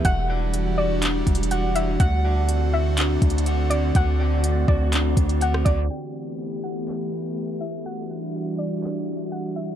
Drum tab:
HH |x-----------x-----------x-----x-x-x-x-----x-----|x-----------x-----------x-----x-x-x-x-----x-----|x-----------x-----------x-----x--x--x-----x-----|------------------------------------------------|
CP |------------------------x-----------------------|------------------------x-----------------------|------------------------x-----------------------|------------------------x-----------------------|
SD |------------------------------------------------|------------------------------------------------|---------------------------------------r--------|------------------------------------------------|
BD |o-----------------------------o-----------------|o-----------------------------o-----------------|o-----------------o-----------o-----------o-----|------------------------------------------------|

HH |------------------------------------------------|
CP |------------------------x-----------------------|
SD |------------------------------------------------|
BD |------------------------------------------------|